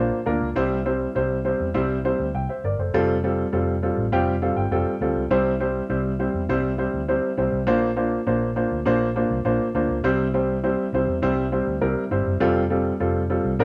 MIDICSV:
0, 0, Header, 1, 3, 480
1, 0, Start_track
1, 0, Tempo, 592885
1, 453, Time_signature, 4, 2, 24, 8
1, 11044, End_track
2, 0, Start_track
2, 0, Title_t, "Upright piano"
2, 0, Program_c, 0, 0
2, 0, Note_on_c, 0, 58, 90
2, 0, Note_on_c, 0, 62, 79
2, 0, Note_on_c, 0, 65, 84
2, 0, Note_on_c, 0, 72, 97
2, 143, Note_off_c, 0, 62, 0
2, 144, Note_off_c, 0, 58, 0
2, 146, Note_off_c, 0, 65, 0
2, 146, Note_off_c, 0, 72, 0
2, 208, Note_on_c, 0, 58, 88
2, 211, Note_on_c, 0, 62, 82
2, 213, Note_on_c, 0, 65, 81
2, 214, Note_on_c, 0, 70, 98
2, 383, Note_off_c, 0, 58, 0
2, 385, Note_off_c, 0, 62, 0
2, 386, Note_off_c, 0, 65, 0
2, 386, Note_off_c, 0, 70, 0
2, 450, Note_on_c, 0, 60, 100
2, 451, Note_on_c, 0, 55, 115
2, 455, Note_on_c, 0, 64, 107
2, 455, Note_on_c, 0, 72, 127
2, 624, Note_off_c, 0, 60, 0
2, 625, Note_off_c, 0, 55, 0
2, 627, Note_off_c, 0, 64, 0
2, 627, Note_off_c, 0, 72, 0
2, 690, Note_on_c, 0, 55, 83
2, 691, Note_on_c, 0, 60, 81
2, 694, Note_on_c, 0, 64, 79
2, 695, Note_on_c, 0, 72, 94
2, 864, Note_off_c, 0, 55, 0
2, 865, Note_off_c, 0, 60, 0
2, 866, Note_off_c, 0, 64, 0
2, 867, Note_off_c, 0, 72, 0
2, 931, Note_on_c, 0, 55, 89
2, 935, Note_on_c, 0, 60, 77
2, 935, Note_on_c, 0, 64, 81
2, 938, Note_on_c, 0, 72, 98
2, 1105, Note_off_c, 0, 55, 0
2, 1107, Note_off_c, 0, 60, 0
2, 1107, Note_off_c, 0, 64, 0
2, 1109, Note_off_c, 0, 72, 0
2, 1171, Note_on_c, 0, 55, 88
2, 1172, Note_on_c, 0, 60, 77
2, 1172, Note_on_c, 0, 64, 79
2, 1174, Note_on_c, 0, 72, 93
2, 1345, Note_off_c, 0, 55, 0
2, 1346, Note_off_c, 0, 60, 0
2, 1346, Note_off_c, 0, 64, 0
2, 1347, Note_off_c, 0, 72, 0
2, 1411, Note_on_c, 0, 55, 110
2, 1412, Note_on_c, 0, 64, 105
2, 1413, Note_on_c, 0, 60, 100
2, 1413, Note_on_c, 0, 72, 117
2, 1585, Note_off_c, 0, 55, 0
2, 1586, Note_off_c, 0, 60, 0
2, 1586, Note_off_c, 0, 64, 0
2, 1586, Note_off_c, 0, 72, 0
2, 1655, Note_on_c, 0, 55, 87
2, 1655, Note_on_c, 0, 60, 79
2, 1659, Note_on_c, 0, 64, 79
2, 1660, Note_on_c, 0, 72, 100
2, 1828, Note_off_c, 0, 55, 0
2, 1828, Note_off_c, 0, 60, 0
2, 1830, Note_off_c, 0, 64, 0
2, 1830, Note_off_c, 0, 72, 0
2, 1899, Note_on_c, 0, 79, 69
2, 1903, Note_on_c, 0, 76, 59
2, 2006, Note_off_c, 0, 76, 0
2, 2011, Note_off_c, 0, 79, 0
2, 2019, Note_on_c, 0, 76, 74
2, 2023, Note_on_c, 0, 72, 65
2, 2131, Note_off_c, 0, 76, 0
2, 2133, Note_off_c, 0, 72, 0
2, 2142, Note_on_c, 0, 74, 70
2, 2144, Note_on_c, 0, 70, 61
2, 2253, Note_off_c, 0, 74, 0
2, 2254, Note_off_c, 0, 70, 0
2, 2262, Note_on_c, 0, 72, 66
2, 2269, Note_on_c, 0, 69, 55
2, 2371, Note_off_c, 0, 69, 0
2, 2379, Note_on_c, 0, 55, 109
2, 2382, Note_on_c, 0, 60, 107
2, 2382, Note_on_c, 0, 65, 101
2, 2383, Note_on_c, 0, 69, 127
2, 2487, Note_off_c, 0, 72, 0
2, 2550, Note_off_c, 0, 55, 0
2, 2551, Note_off_c, 0, 60, 0
2, 2551, Note_off_c, 0, 65, 0
2, 2552, Note_off_c, 0, 69, 0
2, 2619, Note_on_c, 0, 55, 88
2, 2620, Note_on_c, 0, 60, 82
2, 2624, Note_on_c, 0, 65, 80
2, 2624, Note_on_c, 0, 69, 98
2, 2790, Note_off_c, 0, 55, 0
2, 2790, Note_off_c, 0, 60, 0
2, 2792, Note_off_c, 0, 65, 0
2, 2793, Note_off_c, 0, 69, 0
2, 2855, Note_on_c, 0, 55, 88
2, 2856, Note_on_c, 0, 60, 81
2, 2856, Note_on_c, 0, 69, 94
2, 2859, Note_on_c, 0, 65, 78
2, 3028, Note_off_c, 0, 55, 0
2, 3029, Note_off_c, 0, 60, 0
2, 3029, Note_off_c, 0, 69, 0
2, 3030, Note_off_c, 0, 65, 0
2, 3098, Note_on_c, 0, 55, 82
2, 3100, Note_on_c, 0, 60, 77
2, 3101, Note_on_c, 0, 65, 82
2, 3101, Note_on_c, 0, 69, 88
2, 3269, Note_off_c, 0, 55, 0
2, 3271, Note_off_c, 0, 60, 0
2, 3271, Note_off_c, 0, 65, 0
2, 3271, Note_off_c, 0, 69, 0
2, 3337, Note_on_c, 0, 55, 107
2, 3338, Note_on_c, 0, 60, 99
2, 3340, Note_on_c, 0, 65, 99
2, 3342, Note_on_c, 0, 67, 122
2, 3509, Note_off_c, 0, 55, 0
2, 3510, Note_off_c, 0, 60, 0
2, 3511, Note_off_c, 0, 65, 0
2, 3511, Note_off_c, 0, 67, 0
2, 3578, Note_on_c, 0, 55, 84
2, 3578, Note_on_c, 0, 60, 76
2, 3580, Note_on_c, 0, 65, 73
2, 3580, Note_on_c, 0, 69, 96
2, 3580, Note_on_c, 0, 77, 74
2, 3690, Note_off_c, 0, 77, 0
2, 3697, Note_on_c, 0, 79, 72
2, 3749, Note_off_c, 0, 55, 0
2, 3750, Note_off_c, 0, 60, 0
2, 3750, Note_off_c, 0, 65, 0
2, 3750, Note_off_c, 0, 69, 0
2, 3808, Note_off_c, 0, 79, 0
2, 3816, Note_on_c, 0, 55, 86
2, 3820, Note_on_c, 0, 60, 80
2, 3820, Note_on_c, 0, 65, 80
2, 3821, Note_on_c, 0, 79, 76
2, 3822, Note_on_c, 0, 69, 98
2, 3988, Note_off_c, 0, 55, 0
2, 3990, Note_off_c, 0, 60, 0
2, 3990, Note_off_c, 0, 65, 0
2, 3991, Note_off_c, 0, 69, 0
2, 4058, Note_on_c, 0, 55, 81
2, 4061, Note_on_c, 0, 65, 77
2, 4062, Note_on_c, 0, 60, 76
2, 4063, Note_on_c, 0, 69, 88
2, 4229, Note_off_c, 0, 55, 0
2, 4231, Note_off_c, 0, 65, 0
2, 4232, Note_off_c, 0, 60, 0
2, 4232, Note_off_c, 0, 69, 0
2, 4266, Note_off_c, 0, 79, 0
2, 4296, Note_on_c, 0, 55, 108
2, 4296, Note_on_c, 0, 60, 103
2, 4297, Note_on_c, 0, 64, 106
2, 4299, Note_on_c, 0, 72, 122
2, 4468, Note_off_c, 0, 55, 0
2, 4468, Note_off_c, 0, 60, 0
2, 4469, Note_off_c, 0, 64, 0
2, 4470, Note_off_c, 0, 72, 0
2, 4534, Note_on_c, 0, 55, 89
2, 4536, Note_on_c, 0, 60, 79
2, 4538, Note_on_c, 0, 64, 79
2, 4538, Note_on_c, 0, 72, 101
2, 4707, Note_off_c, 0, 55, 0
2, 4708, Note_off_c, 0, 60, 0
2, 4709, Note_off_c, 0, 64, 0
2, 4709, Note_off_c, 0, 72, 0
2, 4773, Note_on_c, 0, 55, 88
2, 4774, Note_on_c, 0, 60, 83
2, 4774, Note_on_c, 0, 64, 83
2, 4776, Note_on_c, 0, 72, 98
2, 4947, Note_off_c, 0, 55, 0
2, 4947, Note_off_c, 0, 60, 0
2, 4947, Note_off_c, 0, 64, 0
2, 4948, Note_off_c, 0, 72, 0
2, 5014, Note_on_c, 0, 55, 86
2, 5016, Note_on_c, 0, 60, 79
2, 5016, Note_on_c, 0, 64, 79
2, 5018, Note_on_c, 0, 72, 92
2, 5187, Note_off_c, 0, 55, 0
2, 5188, Note_off_c, 0, 60, 0
2, 5188, Note_off_c, 0, 64, 0
2, 5189, Note_off_c, 0, 72, 0
2, 5256, Note_on_c, 0, 55, 106
2, 5256, Note_on_c, 0, 64, 97
2, 5259, Note_on_c, 0, 60, 101
2, 5259, Note_on_c, 0, 72, 121
2, 5428, Note_off_c, 0, 55, 0
2, 5428, Note_off_c, 0, 64, 0
2, 5429, Note_off_c, 0, 60, 0
2, 5429, Note_off_c, 0, 72, 0
2, 5489, Note_on_c, 0, 55, 86
2, 5490, Note_on_c, 0, 60, 80
2, 5490, Note_on_c, 0, 64, 76
2, 5495, Note_on_c, 0, 72, 97
2, 5665, Note_off_c, 0, 55, 0
2, 5665, Note_off_c, 0, 60, 0
2, 5665, Note_off_c, 0, 64, 0
2, 5667, Note_off_c, 0, 72, 0
2, 5735, Note_on_c, 0, 55, 88
2, 5735, Note_on_c, 0, 60, 84
2, 5735, Note_on_c, 0, 64, 81
2, 5738, Note_on_c, 0, 72, 96
2, 5907, Note_off_c, 0, 55, 0
2, 5907, Note_off_c, 0, 60, 0
2, 5907, Note_off_c, 0, 64, 0
2, 5909, Note_off_c, 0, 72, 0
2, 5971, Note_on_c, 0, 55, 86
2, 5971, Note_on_c, 0, 60, 82
2, 5973, Note_on_c, 0, 64, 77
2, 5975, Note_on_c, 0, 72, 89
2, 6145, Note_off_c, 0, 55, 0
2, 6145, Note_off_c, 0, 60, 0
2, 6146, Note_off_c, 0, 64, 0
2, 6147, Note_off_c, 0, 72, 0
2, 6208, Note_on_c, 0, 58, 117
2, 6208, Note_on_c, 0, 62, 104
2, 6208, Note_on_c, 0, 65, 105
2, 6212, Note_on_c, 0, 72, 127
2, 6383, Note_off_c, 0, 65, 0
2, 6384, Note_off_c, 0, 58, 0
2, 6384, Note_off_c, 0, 62, 0
2, 6386, Note_off_c, 0, 72, 0
2, 6448, Note_on_c, 0, 58, 90
2, 6449, Note_on_c, 0, 65, 81
2, 6450, Note_on_c, 0, 62, 85
2, 6451, Note_on_c, 0, 72, 95
2, 6623, Note_off_c, 0, 58, 0
2, 6624, Note_off_c, 0, 65, 0
2, 6625, Note_off_c, 0, 62, 0
2, 6625, Note_off_c, 0, 72, 0
2, 6693, Note_on_c, 0, 58, 90
2, 6694, Note_on_c, 0, 62, 80
2, 6694, Note_on_c, 0, 65, 79
2, 6695, Note_on_c, 0, 72, 99
2, 6865, Note_off_c, 0, 58, 0
2, 6866, Note_off_c, 0, 62, 0
2, 6866, Note_off_c, 0, 65, 0
2, 6867, Note_off_c, 0, 72, 0
2, 6930, Note_on_c, 0, 58, 89
2, 6930, Note_on_c, 0, 62, 76
2, 6931, Note_on_c, 0, 65, 78
2, 6933, Note_on_c, 0, 72, 97
2, 7104, Note_off_c, 0, 58, 0
2, 7104, Note_off_c, 0, 62, 0
2, 7105, Note_off_c, 0, 65, 0
2, 7105, Note_off_c, 0, 72, 0
2, 7169, Note_on_c, 0, 62, 98
2, 7171, Note_on_c, 0, 58, 110
2, 7172, Note_on_c, 0, 65, 100
2, 7175, Note_on_c, 0, 72, 123
2, 7343, Note_off_c, 0, 62, 0
2, 7344, Note_off_c, 0, 58, 0
2, 7345, Note_off_c, 0, 65, 0
2, 7346, Note_off_c, 0, 72, 0
2, 7413, Note_on_c, 0, 58, 86
2, 7416, Note_on_c, 0, 62, 83
2, 7416, Note_on_c, 0, 65, 80
2, 7417, Note_on_c, 0, 72, 98
2, 7585, Note_off_c, 0, 58, 0
2, 7587, Note_off_c, 0, 62, 0
2, 7587, Note_off_c, 0, 65, 0
2, 7587, Note_off_c, 0, 72, 0
2, 7650, Note_on_c, 0, 58, 91
2, 7650, Note_on_c, 0, 62, 86
2, 7651, Note_on_c, 0, 72, 102
2, 7653, Note_on_c, 0, 65, 85
2, 7823, Note_off_c, 0, 58, 0
2, 7823, Note_off_c, 0, 62, 0
2, 7824, Note_off_c, 0, 72, 0
2, 7825, Note_off_c, 0, 65, 0
2, 7891, Note_on_c, 0, 58, 86
2, 7892, Note_on_c, 0, 62, 81
2, 7894, Note_on_c, 0, 65, 78
2, 7895, Note_on_c, 0, 72, 94
2, 8064, Note_off_c, 0, 58, 0
2, 8064, Note_off_c, 0, 62, 0
2, 8065, Note_off_c, 0, 65, 0
2, 8066, Note_off_c, 0, 72, 0
2, 8127, Note_on_c, 0, 55, 113
2, 8129, Note_on_c, 0, 60, 107
2, 8129, Note_on_c, 0, 64, 104
2, 8131, Note_on_c, 0, 72, 126
2, 8301, Note_off_c, 0, 55, 0
2, 8302, Note_off_c, 0, 60, 0
2, 8302, Note_off_c, 0, 64, 0
2, 8303, Note_off_c, 0, 72, 0
2, 8370, Note_on_c, 0, 55, 92
2, 8371, Note_on_c, 0, 60, 80
2, 8373, Note_on_c, 0, 64, 84
2, 8373, Note_on_c, 0, 72, 97
2, 8543, Note_off_c, 0, 55, 0
2, 8543, Note_off_c, 0, 60, 0
2, 8544, Note_off_c, 0, 64, 0
2, 8545, Note_off_c, 0, 72, 0
2, 8610, Note_on_c, 0, 55, 95
2, 8610, Note_on_c, 0, 60, 88
2, 8610, Note_on_c, 0, 64, 83
2, 8614, Note_on_c, 0, 72, 99
2, 8783, Note_off_c, 0, 55, 0
2, 8783, Note_off_c, 0, 60, 0
2, 8783, Note_off_c, 0, 64, 0
2, 8784, Note_off_c, 0, 72, 0
2, 8856, Note_on_c, 0, 55, 83
2, 8856, Note_on_c, 0, 60, 78
2, 8860, Note_on_c, 0, 64, 78
2, 8862, Note_on_c, 0, 72, 100
2, 9025, Note_off_c, 0, 55, 0
2, 9025, Note_off_c, 0, 60, 0
2, 9027, Note_off_c, 0, 64, 0
2, 9028, Note_off_c, 0, 72, 0
2, 9085, Note_on_c, 0, 55, 109
2, 9088, Note_on_c, 0, 64, 104
2, 9089, Note_on_c, 0, 60, 97
2, 9089, Note_on_c, 0, 72, 127
2, 9260, Note_off_c, 0, 55, 0
2, 9261, Note_off_c, 0, 64, 0
2, 9262, Note_off_c, 0, 60, 0
2, 9262, Note_off_c, 0, 72, 0
2, 9326, Note_on_c, 0, 55, 90
2, 9327, Note_on_c, 0, 60, 80
2, 9330, Note_on_c, 0, 64, 80
2, 9332, Note_on_c, 0, 72, 94
2, 9500, Note_off_c, 0, 55, 0
2, 9501, Note_off_c, 0, 60, 0
2, 9502, Note_off_c, 0, 64, 0
2, 9503, Note_off_c, 0, 72, 0
2, 9563, Note_on_c, 0, 55, 88
2, 9565, Note_on_c, 0, 60, 82
2, 9565, Note_on_c, 0, 64, 82
2, 9566, Note_on_c, 0, 70, 98
2, 9738, Note_off_c, 0, 55, 0
2, 9739, Note_off_c, 0, 60, 0
2, 9739, Note_off_c, 0, 64, 0
2, 9740, Note_off_c, 0, 70, 0
2, 9805, Note_on_c, 0, 55, 90
2, 9805, Note_on_c, 0, 60, 76
2, 9806, Note_on_c, 0, 64, 80
2, 9809, Note_on_c, 0, 72, 92
2, 9979, Note_off_c, 0, 55, 0
2, 9979, Note_off_c, 0, 60, 0
2, 9980, Note_off_c, 0, 64, 0
2, 9981, Note_off_c, 0, 72, 0
2, 10041, Note_on_c, 0, 55, 117
2, 10042, Note_on_c, 0, 60, 108
2, 10043, Note_on_c, 0, 65, 114
2, 10047, Note_on_c, 0, 69, 124
2, 10217, Note_off_c, 0, 55, 0
2, 10217, Note_off_c, 0, 60, 0
2, 10218, Note_off_c, 0, 65, 0
2, 10220, Note_off_c, 0, 69, 0
2, 10282, Note_on_c, 0, 55, 94
2, 10284, Note_on_c, 0, 60, 81
2, 10285, Note_on_c, 0, 69, 99
2, 10287, Note_on_c, 0, 65, 78
2, 10457, Note_off_c, 0, 55, 0
2, 10458, Note_off_c, 0, 60, 0
2, 10458, Note_off_c, 0, 69, 0
2, 10460, Note_off_c, 0, 65, 0
2, 10524, Note_on_c, 0, 55, 87
2, 10525, Note_on_c, 0, 60, 78
2, 10528, Note_on_c, 0, 65, 86
2, 10529, Note_on_c, 0, 69, 100
2, 10698, Note_off_c, 0, 55, 0
2, 10698, Note_off_c, 0, 60, 0
2, 10700, Note_off_c, 0, 65, 0
2, 10701, Note_off_c, 0, 69, 0
2, 10765, Note_on_c, 0, 55, 85
2, 10765, Note_on_c, 0, 60, 76
2, 10768, Note_on_c, 0, 65, 83
2, 10768, Note_on_c, 0, 69, 94
2, 10938, Note_off_c, 0, 55, 0
2, 10938, Note_off_c, 0, 60, 0
2, 10940, Note_off_c, 0, 65, 0
2, 10940, Note_off_c, 0, 69, 0
2, 11005, Note_on_c, 0, 60, 103
2, 11007, Note_on_c, 0, 53, 106
2, 11008, Note_on_c, 0, 62, 98
2, 11011, Note_on_c, 0, 70, 122
2, 11044, Note_off_c, 0, 53, 0
2, 11044, Note_off_c, 0, 60, 0
2, 11044, Note_off_c, 0, 62, 0
2, 11044, Note_off_c, 0, 70, 0
2, 11044, End_track
3, 0, Start_track
3, 0, Title_t, "Fingered electric bass"
3, 0, Program_c, 1, 33
3, 214, Note_on_c, 1, 38, 89
3, 314, Note_off_c, 1, 38, 0
3, 333, Note_on_c, 1, 37, 89
3, 433, Note_off_c, 1, 37, 0
3, 455, Note_on_c, 1, 36, 98
3, 854, Note_off_c, 1, 36, 0
3, 935, Note_on_c, 1, 36, 92
3, 1234, Note_off_c, 1, 36, 0
3, 1295, Note_on_c, 1, 40, 93
3, 1395, Note_off_c, 1, 40, 0
3, 1415, Note_on_c, 1, 36, 98
3, 1715, Note_off_c, 1, 36, 0
3, 1776, Note_on_c, 1, 38, 92
3, 1875, Note_off_c, 1, 38, 0
3, 1897, Note_on_c, 1, 36, 96
3, 1996, Note_off_c, 1, 36, 0
3, 2136, Note_on_c, 1, 31, 90
3, 2235, Note_off_c, 1, 31, 0
3, 2256, Note_on_c, 1, 30, 97
3, 2356, Note_off_c, 1, 30, 0
3, 2376, Note_on_c, 1, 29, 113
3, 2775, Note_off_c, 1, 29, 0
3, 2856, Note_on_c, 1, 29, 89
3, 3155, Note_off_c, 1, 29, 0
3, 3211, Note_on_c, 1, 33, 96
3, 3313, Note_off_c, 1, 33, 0
3, 3335, Note_on_c, 1, 29, 99
3, 3635, Note_off_c, 1, 29, 0
3, 3692, Note_on_c, 1, 31, 91
3, 3793, Note_off_c, 1, 31, 0
3, 3814, Note_on_c, 1, 29, 94
3, 3914, Note_off_c, 1, 29, 0
3, 4053, Note_on_c, 1, 38, 90
3, 4154, Note_off_c, 1, 38, 0
3, 4175, Note_on_c, 1, 37, 84
3, 4275, Note_off_c, 1, 37, 0
3, 4293, Note_on_c, 1, 36, 100
3, 4693, Note_off_c, 1, 36, 0
3, 4772, Note_on_c, 1, 36, 92
3, 5073, Note_off_c, 1, 36, 0
3, 5131, Note_on_c, 1, 40, 85
3, 5233, Note_off_c, 1, 40, 0
3, 5251, Note_on_c, 1, 36, 101
3, 5552, Note_off_c, 1, 36, 0
3, 5615, Note_on_c, 1, 38, 86
3, 5815, Note_off_c, 1, 38, 0
3, 5971, Note_on_c, 1, 36, 96
3, 6072, Note_off_c, 1, 36, 0
3, 6089, Note_on_c, 1, 36, 94
3, 6205, Note_off_c, 1, 36, 0
3, 6205, Note_on_c, 1, 34, 110
3, 6607, Note_off_c, 1, 34, 0
3, 6692, Note_on_c, 1, 34, 89
3, 6992, Note_off_c, 1, 34, 0
3, 7052, Note_on_c, 1, 38, 88
3, 7152, Note_off_c, 1, 38, 0
3, 7174, Note_on_c, 1, 34, 94
3, 7472, Note_off_c, 1, 34, 0
3, 7529, Note_on_c, 1, 36, 95
3, 7630, Note_off_c, 1, 36, 0
3, 7648, Note_on_c, 1, 34, 89
3, 7750, Note_off_c, 1, 34, 0
3, 7888, Note_on_c, 1, 38, 88
3, 7990, Note_off_c, 1, 38, 0
3, 8005, Note_on_c, 1, 37, 94
3, 8108, Note_off_c, 1, 37, 0
3, 8126, Note_on_c, 1, 36, 122
3, 8698, Note_off_c, 1, 36, 0
3, 8846, Note_on_c, 1, 36, 100
3, 8947, Note_off_c, 1, 36, 0
3, 8965, Note_on_c, 1, 40, 93
3, 9067, Note_off_c, 1, 40, 0
3, 9086, Note_on_c, 1, 36, 105
3, 9386, Note_off_c, 1, 36, 0
3, 9448, Note_on_c, 1, 38, 90
3, 9548, Note_off_c, 1, 38, 0
3, 9564, Note_on_c, 1, 36, 92
3, 9666, Note_off_c, 1, 36, 0
3, 9803, Note_on_c, 1, 31, 97
3, 9905, Note_off_c, 1, 31, 0
3, 9922, Note_on_c, 1, 30, 93
3, 10025, Note_off_c, 1, 30, 0
3, 10042, Note_on_c, 1, 29, 110
3, 10443, Note_off_c, 1, 29, 0
3, 10525, Note_on_c, 1, 29, 95
3, 10825, Note_off_c, 1, 29, 0
3, 10883, Note_on_c, 1, 36, 93
3, 10984, Note_off_c, 1, 36, 0
3, 11003, Note_on_c, 1, 46, 106
3, 11044, Note_off_c, 1, 46, 0
3, 11044, End_track
0, 0, End_of_file